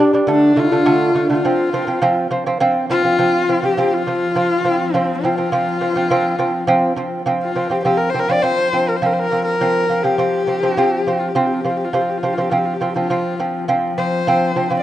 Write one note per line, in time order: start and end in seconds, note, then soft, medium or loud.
0.00 0.11 G3 medium
0.00 0.12 D4 medium
0.00 0.15 D4 medium
0.00 0.16 D4 medium
0.13 0.26 G3 medium
0.13 0.26 D4 medium
0.27 0.51 D3 medium
0.27 0.52 A3 medium
0.27 0.59 D4 medium
0.27 0.61 D4 medium
0.56 0.69 D3 medium
0.56 0.69 A3 medium
0.56 1.31 F4 medium
0.72 0.84 D3 medium
0.72 0.84 A3 medium
0.86 1.10 D3 medium
0.86 1.10 A3 loud
1.15 1.27 D3 medium
1.15 1.28 A3 medium
1.30 1.42 D3 medium
1.30 1.42 A3 medium
1.30 2.29 F4 medium
1.45 1.68 F3 medium
1.45 1.69 C4 medium
1.73 1.86 F3 medium
1.73 1.86 C4 medium
1.87 2.00 F3 medium
1.87 2.00 C4 medium
2.02 2.26 F3 loud
2.02 2.26 C4 loud
2.31 2.43 F3 medium
2.31 2.44 C4 medium
2.46 2.58 F3 medium
2.46 2.59 C4 medium
2.60 2.84 F3 loud
2.60 7.26 F3 medium
2.60 2.85 C4 loud
2.90 3.02 F3 medium
2.90 3.02 C4 medium
2.90 3.67 F4 loud
3.04 3.16 F3 medium
3.04 3.17 C4 medium
3.19 3.43 F3 medium
3.19 3.43 C4 medium
3.49 3.60 F3 medium
3.49 3.61 C4 medium
3.63 3.75 F3 medium
3.63 3.75 C4 medium
3.63 3.95 G4 medium
3.77 4.01 F3 medium
3.77 4.01 C4 medium
3.94 4.98 F4 loud
4.07 4.30 F3 medium
4.07 4.31 C4 medium
4.36 4.59 F3 medium
4.36 4.60 C4 medium
4.64 4.88 F3 medium
4.64 4.89 C4 medium
4.94 5.17 F3 medium
4.94 5.18 C4 medium
4.94 5.28 C4 medium
5.24 5.35 F3 medium
5.24 5.36 C4 medium
5.24 7.00 F4 medium
5.38 5.50 F3 medium
5.38 5.50 C4 medium
5.52 5.76 F3 medium
5.52 5.76 C4 medium
5.81 5.93 F3 medium
5.81 5.93 C4 medium
5.96 6.08 F3 medium
5.96 6.08 C4 medium
6.10 6.34 F3 medium
6.10 6.34 C4 loud
6.39 6.63 F3 medium
6.39 6.63 C4 medium
6.67 6.92 F3 loud
6.67 6.92 C4 loud
6.96 7.21 F3 medium
6.96 7.21 C4 medium
7.26 7.50 F3 medium
7.26 11.93 F3 medium
7.26 7.50 C4 medium
7.42 7.73 F4 medium
7.55 7.68 F3 medium
7.55 7.68 C4 medium
7.70 7.82 F3 medium
7.70 7.83 C4 medium
7.70 7.83 G4 medium
7.83 8.09 F3 medium
7.83 8.09 C4 medium
7.83 7.99 G4 medium
7.97 8.11 A#4 medium
8.10 8.21 C5 medium
8.14 8.26 F3 medium
8.14 8.27 C4 medium
8.19 8.33 A#4 medium
8.29 8.41 F3 medium
8.29 8.41 C4 medium
8.29 8.44 D5 medium
8.42 8.67 F3 medium
8.42 8.67 C4 medium
8.42 8.90 C5 loud
8.73 8.96 F3 medium
8.73 8.97 C4 medium
8.88 8.98 A#4 medium
8.97 9.08 C5 medium
9.02 9.25 F3 medium
9.02 9.26 C4 medium
9.06 9.15 A#4 medium
9.13 9.21 C5 medium
9.19 9.44 A#4 medium
9.32 9.55 F3 medium
9.32 9.55 C4 medium
9.45 10.04 A#4 medium
9.61 9.84 F3 medium
9.61 9.84 C4 medium
9.89 10.01 F3 medium
9.89 10.02 C4 medium
10.03 10.16 F3 medium
10.03 10.16 C4 medium
10.03 11.21 G4 medium
10.18 10.42 F3 medium
10.18 10.42 C4 medium
10.47 10.59 F3 medium
10.47 10.60 C4 medium
10.63 10.74 F3 medium
10.63 10.75 C4 medium
10.77 11.00 F3 medium
10.77 11.01 C4 loud
11.07 11.30 F3 medium
11.07 11.30 C4 medium
11.20 11.30 F4 medium
11.28 11.38 G4 medium
11.35 11.59 F3 medium
11.35 11.59 C4 loud
11.35 11.48 F4 medium
11.46 11.55 G4 soft
11.53 11.62 F4 medium
11.60 11.71 G4 medium
11.64 11.88 F3 medium
11.64 11.88 C4 medium
11.70 11.79 F4 medium
11.77 11.86 G4 medium
11.85 11.95 F4 medium
11.93 12.17 F3 medium
11.93 14.83 F3 medium
11.93 12.17 C4 medium
11.93 12.03 G4 medium
12.02 12.11 F4 medium
12.10 12.19 G4 medium
12.18 12.26 F4 medium
12.23 12.35 F3 medium
12.23 12.35 C4 medium
12.23 12.35 G4 medium
12.34 12.49 F3 medium
12.34 12.42 F4 medium
12.38 12.50 C4 medium
12.38 12.51 G4 medium
12.50 12.75 F3 medium
12.50 12.76 C4 medium
12.50 12.59 F4 medium
12.57 12.67 G4 medium
12.65 12.75 F4 medium
12.73 12.83 G4 medium
12.81 12.93 F3 medium
12.81 12.93 C4 medium
12.81 12.91 F4 medium
12.89 12.97 G4 medium
12.95 13.07 F3 medium
12.95 13.08 C4 medium
12.95 13.60 F4 medium
13.10 13.34 F3 medium
13.10 13.34 C4 medium
13.40 13.63 F3 medium
13.40 13.63 C4 medium
13.68 13.92 F3 medium
13.68 13.92 C4 loud
13.98 14.21 F3 medium
13.98 14.22 C4 medium
13.98 14.74 C5 medium
14.27 14.50 F3 medium
14.27 14.51 C4 loud
14.56 14.68 F3 medium
14.56 14.68 C4 medium
14.70 14.82 F3 medium
14.70 14.83 C4 medium
14.79 14.83 D5 medium